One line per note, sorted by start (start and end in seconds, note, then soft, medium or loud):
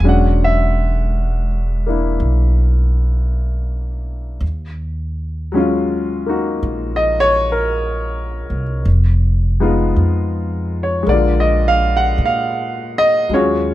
0.00 2.17 E1 medium
0.00 4.44 G#3 soft
0.04 4.44 F#3 soft
0.04 4.44 C#4 soft
0.04 1.86 D4 medium
0.09 0.41 F#5 medium
0.44 1.48 E5 medium
1.86 4.42 A#3 soft
1.86 4.43 D4 soft
1.86 4.43 E4 soft
2.20 4.37 B1 medium
4.41 6.58 D#2 medium
5.52 8.84 F#3 medium
5.52 8.85 G#3 soft
5.52 8.86 C#4 soft
5.57 8.87 F4 medium
6.26 8.84 A#3 soft
6.26 8.85 D#4 soft
6.26 8.86 F#4 soft
6.63 8.45 A#1 medium
6.96 7.35 D#5 medium
7.20 7.46 C#5 medium
7.52 8.61 A#4 medium
8.50 8.82 C2 medium
8.85 9.92 F1 medium
9.60 11.01 G#3 medium
9.60 11.07 B3 soft
9.60 11.07 D#4 soft
9.60 11.08 F4 medium
9.96 11.03 F2 medium
10.83 11.03 C#5 medium
11.03 12.14 A#1 medium
11.03 13.28 G#3 medium
11.07 13.32 D3 soft
11.07 13.30 A#3 soft
11.07 11.45 D5 medium
11.14 13.33 F4 medium
11.40 11.79 D#5 medium
11.68 11.92 F5 medium
11.97 12.16 F#5 medium
12.18 13.26 A#2 medium
12.26 13.12 F5 medium
12.98 13.33 D#5 loud
13.29 13.74 D#2 medium
13.29 13.74 F#3 soft
13.29 13.74 G#3 soft
13.33 13.74 C#4 soft
13.33 13.74 F4 medium
13.33 13.74 F#4 medium
13.33 13.74 G#4 soft
13.33 13.74 C#5 medium